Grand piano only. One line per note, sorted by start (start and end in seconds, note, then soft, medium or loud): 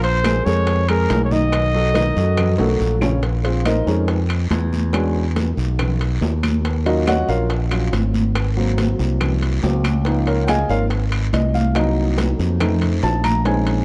0.00 0.17 F3 medium
0.00 0.18 F4 medium
0.00 0.18 F5 medium
0.25 0.43 G#3 medium
0.25 0.43 G#4 medium
0.25 0.43 A#4 medium
0.46 0.81 G#3 medium
0.46 0.81 G#4 medium
0.46 0.81 A#4 medium
0.89 1.24 G#3 medium
0.89 1.24 G#4 medium
0.89 1.24 A#4 medium
1.31 1.66 D#3 medium
1.31 1.67 D#4 medium
1.31 1.67 D#5 medium
1.74 1.92 F#3 medium
1.74 1.92 F#4 medium
1.74 1.92 A4 medium
1.96 2.13 D#3 medium
1.96 2.13 D#4 medium
1.96 2.13 D#5 medium
2.17 2.52 F#3 medium
2.17 2.52 F#4 medium
2.17 2.52 A4 medium
2.59 2.94 F#3 medium
2.59 2.94 F#4 medium
2.59 2.95 A4 medium
3.02 3.20 C#3 medium
3.02 3.20 C#4 medium
3.02 3.20 C#5 medium
3.44 3.65 C4 medium
3.44 3.66 F4 medium
3.44 3.65 G#4 medium
3.44 3.65 C5 medium
3.66 3.86 D#4 medium
3.66 3.86 A#4 medium
3.66 3.87 C5 medium
3.66 3.87 D#5 medium
3.86 4.15 G#3 medium
3.86 4.16 C4 soft
3.86 4.08 C#4 medium
3.86 4.16 D#4 medium
3.86 4.08 G#4 medium
3.86 4.08 A#4 medium
3.86 4.08 C#5 medium
4.93 5.22 G#3 medium
4.93 5.22 C#4 soft
4.93 5.22 D4 medium
4.93 5.23 F#4 medium
6.85 7.47 F#3 medium
6.85 7.47 C#4 soft
6.85 7.07 D#4 medium
6.85 7.28 F4 medium
6.85 7.07 F#4 medium
6.85 7.07 A#4 medium
6.85 7.07 D#5 medium
7.08 7.29 F#4 medium
7.08 7.28 C#5 medium
7.08 7.29 D#5 medium
7.08 7.28 F#5 medium
7.29 7.50 F4 medium
7.29 7.50 A#4 medium
7.29 7.50 C#5 medium
7.29 7.50 F5 medium
7.71 7.90 F#3 soft
7.71 7.91 C#4 soft
7.71 7.91 F4 medium
8.57 9.61 F#3 medium
8.57 9.62 A#3 soft
8.57 9.62 C4 medium
9.63 9.82 F#3 soft
9.63 9.82 A#3 soft
9.63 9.83 C4 medium
10.06 10.34 F3 medium
10.06 10.34 A#3 soft
10.06 10.35 D#4 medium
10.27 10.48 F4 medium
10.27 10.48 A#4 medium
10.27 10.48 C#5 medium
10.27 10.48 F5 medium
10.44 10.47 G5 medium
10.49 10.69 G#4 medium
10.49 10.69 D#5 medium
10.49 10.68 F5 medium
10.49 10.69 G#5 medium
10.69 10.89 F3 soft
10.69 10.89 A#3 soft
10.69 10.89 D#4 soft
10.69 10.83 F4 medium
10.69 10.83 A#4 medium
10.69 10.83 C#5 medium
10.69 10.83 F5 medium
11.34 11.54 D#5 medium
11.54 11.75 F5 medium
11.75 12.56 F#3 medium
11.75 12.57 A#3 soft
11.75 12.57 D#4 medium
11.75 12.16 D#5 medium
12.60 13.21 A3 medium
12.60 13.21 C4 medium
12.60 13.22 D#4 medium
13.04 13.24 A5 medium
13.24 13.45 A#5 loud
13.45 13.85 G#3 medium
13.45 13.85 C4 medium
13.45 13.85 C#4 medium
13.45 13.85 D#4 medium
13.45 13.85 G#5 medium